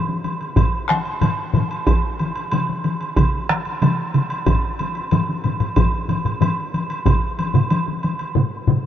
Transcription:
0.08 taiko high soft
0.24 taiko high soft
0.24 high woodblock soft
0.41 taiko high soft
0.41 high woodblock soft
0.56 taiko medium
0.56 taiko low-mid medium
0.56 taiko high medium
0.56 high woodblock soft
0.89 taiko rim medium
0.89 taiko high soft
0.89 high woodblock soft
1.05 taiko high soft
1.05 high woodblock soft
1.21 taiko low-mid medium
1.21 taiko high medium
1.21 high woodblock soft
1.39 taiko high soft
1.53 taiko low-mid medium
1.53 taiko high medium
1.53 high woodblock soft
1.71 taiko high soft
1.71 high woodblock soft
1.87 taiko loud
1.87 taiko high medium
1.87 high woodblock soft
2.04 taiko high soft
2.19 taiko high soft
2.19 high woodblock soft
2.36 taiko high soft
2.36 high woodblock soft
2.52 taiko mid loud
2.52 taiko high medium
2.52 high woodblock soft
2.69 taiko high soft
2.84 taiko high medium
2.84 high woodblock soft
3.01 taiko high soft
3.01 high woodblock soft
3.16 taiko medium
3.16 taiko mid medium
3.16 taiko high medium
3.16 high woodblock soft
3.34 taiko high soft
3.49 taiko rim medium
3.49 taiko high soft
3.49 high woodblock soft
3.65 taiko high soft
3.65 high woodblock soft
3.82 taiko mid medium
3.82 taiko high medium
3.82 high woodblock soft
3.99 taiko high soft
4.14 taiko mid medium
4.14 taiko high medium
4.14 high woodblock soft
4.30 taiko high soft
4.30 high woodblock soft
4.46 taiko loud
4.46 taiko low-mid medium
4.46 taiko high medium
4.46 high woodblock soft
4.79 taiko high medium
4.79 high woodblock soft
4.95 taiko high soft
4.95 high woodblock soft
5.11 taiko low-mid medium
5.11 taiko high medium
5.11 high woodblock soft
5.29 taiko high soft
5.44 taiko low-mid medium
5.44 taiko high medium
5.44 high woodblock soft
5.60 taiko low-mid medium
5.60 taiko high soft
5.60 high woodblock soft
5.76 taiko medium
5.76 taiko low-mid medium
5.76 taiko high medium
5.76 high woodblock medium
5.93 taiko high soft
6.09 taiko low-mid medium
6.09 taiko high soft
6.09 high woodblock soft
6.25 taiko low-mid medium
6.25 high woodblock soft
6.41 taiko low-mid medium
6.41 taiko high medium
6.41 high woodblock medium
6.58 taiko high soft
6.74 taiko high soft
6.74 high woodblock soft
6.90 taiko high soft
6.90 high woodblock soft
7.05 taiko loud
7.05 taiko low-mid medium
7.05 taiko mid medium
7.05 taiko high medium
7.05 high woodblock soft
7.22 taiko high soft
7.39 taiko high soft
7.39 high woodblock soft
7.54 taiko low-mid medium
7.54 taiko mid medium
7.54 high woodblock soft
7.70 taiko high medium
7.70 high woodblock soft
7.88 taiko high soft
8.03 taiko high medium
8.03 high woodblock soft
8.19 taiko high soft
8.19 high woodblock soft
8.35 taiko low-mid medium
8.35 taiko mid medium
8.67 taiko low-mid medium
8.67 taiko mid medium

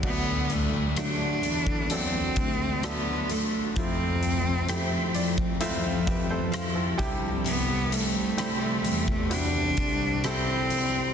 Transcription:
0.00 1.40 D2 medium
0.00 1.40 A2 soft
0.00 0.12 C3 medium
0.00 1.89 D3 medium
0.00 0.92 F#3 medium
0.00 0.12 G3 soft
0.00 0.93 A3 soft
0.00 0.12 C4 soft
0.00 0.13 E4 medium
0.00 3.73 F#4 medium
0.00 3.73 A4 medium
0.00 1.89 D5 medium
0.00 6.96 A5 medium
0.00 kick medium
0.00 crash medium
0.04 0.55 B3 medium
0.04 0.93 D4 soft
0.04 0.93 F#4 medium
0.27 0.73 A3 soft
0.50 1.00 A3 medium
0.50 1.18 D4 medium
0.50 closed hi-hat medium
0.73 1.43 A3 medium
0.96 1.86 F#3 medium
0.96 1.86 A3 medium
0.96 1.86 D4 medium
0.96 1.93 D4 medium
0.96 2.82 F#4 medium
0.96 1.86 F#4 medium
0.96 cross-stick medium
0.96 closed hi-hat medium
1.19 1.65 D4 soft
1.43 2.33 E2 medium
1.43 2.14 A3 soft
1.43 closed hi-hat soft
1.66 2.36 D4 soft
1.66 kick medium
1.90 3.75 D3 medium
1.90 2.79 F#3 medium
1.90 2.79 A3 medium
1.90 2.86 C4 medium
1.90 2.79 D4 soft
1.90 2.80 A4 medium
1.90 closed hi-hat medium
2.14 2.59 A3 soft
2.36 3.26 D2 medium
2.36 3.05 D4 soft
2.36 kick medium
2.36 closed hi-hat medium
2.60 3.29 A3 soft
2.83 3.72 F#3 medium
2.83 3.72 A3 medium
2.83 3.33 B3 medium
2.83 3.72 D4 medium
2.83 3.86 F#4 medium
2.83 3.73 A4 medium
2.83 cross-stick loud
2.83 closed hi-hat medium
3.06 3.51 D4 soft
3.29 4.00 A3 medium
3.29 3.79 A3 medium
3.29 closed hi-hat medium
3.53 3.86 D4 soft
3.76 5.11 F2 medium
3.76 5.12 C3 medium
3.76 5.60 F3 medium
3.76 6.96 F3 medium
3.76 4.65 A3 medium
3.76 4.65 C4 medium
3.76 5.16 C4 medium
3.76 4.65 E4 medium
3.76 4.65 F4 medium
3.76 11.14 A4 medium
3.76 kick loud
3.76 closed hi-hat medium
4.00 4.45 A3 soft
4.23 4.91 C4 medium
4.23 closed hi-hat soft
4.46 5.14 A3 soft
4.68 5.57 A3 medium
4.68 5.57 C4 medium
4.68 6.51 E4 medium
4.68 5.57 E4 medium
4.68 5.57 G4 medium
4.68 cross-stick loud
4.68 closed hi-hat loud
4.92 5.37 C4 soft
5.14 6.96 F2 medium
5.14 5.83 A3 medium
5.14 5.58 D5 medium
5.14 closed hi-hat medium
5.37 6.07 C4 medium
5.37 kick medium
5.60 7.09 F3 medium
5.60 6.49 A3 medium
5.60 6.49 C4 medium
5.60 6.08 E4 medium
5.60 6.08 F4 medium
5.60 5.83 E5 medium
5.60 closed hi-hat medium
5.84 6.28 A3 medium
5.84 6.06 F5 medium
6.07 6.74 C4 medium
6.07 6.30 G4 medium
6.07 6.29 B4 medium
6.07 6.50 E5 medium
6.07 kick medium
6.07 closed hi-hat medium
6.29 7.08 A3 medium
6.29 6.73 A4 medium
6.29 6.74 C5 medium
6.52 8.38 E4 medium
6.52 6.96 F5 medium
6.52 cross-stick loud
6.52 closed hi-hat medium
6.75 7.91 C4 soft
6.75 7.20 F4 soft
6.75 7.20 A4 soft
6.97 8.82 C2 medium
6.97 8.35 G2 medium
6.97 8.32 C3 medium
6.97 8.31 G3 medium
6.97 11.14 G3 medium
6.97 8.32 E4 medium
6.97 8.32 G4 loud
6.97 7.42 G5 medium
6.97 11.13 C6 medium
6.97 kick medium
6.97 closed hi-hat medium
7.44 9.30 C3 medium
7.44 7.94 B3 medium
7.44 closed hi-hat medium
7.68 8.13 G3 soft
7.91 9.34 A3 medium
7.91 8.60 C4 medium
7.91 closed hi-hat medium
8.14 8.84 G3 medium
8.37 9.27 G3 medium
8.37 9.27 C4 medium
8.37 9.27 E4 medium
8.37 10.25 E4 medium
8.37 9.27 G4 medium
8.37 cross-stick loud
8.37 closed hi-hat medium
8.61 9.07 C4 soft
8.84 9.74 E2 medium
8.84 9.54 G3 medium
8.84 closed hi-hat medium
9.08 9.77 C4 medium
9.08 kick medium
9.30 11.14 C3 medium
9.30 10.20 G3 medium
9.30 10.20 C4 medium
9.30 10.27 D4 loud
9.30 10.20 E4 medium
9.30 10.20 F#4 medium
9.30 closed hi-hat medium
9.55 10.00 G3 medium
9.77 10.67 C2 medium
9.77 10.47 C4 medium
9.77 kick medium
9.77 closed hi-hat medium
10.02 10.69 G3 medium
10.24 11.14 G3 medium
10.24 11.14 C4 medium
10.24 11.14 E4 medium
10.24 11.14 A4 medium
10.24 cross-stick loud
10.24 closed hi-hat medium
10.70 11.14 G3 medium
10.70 closed hi-hat medium
10.95 11.14 C4 medium

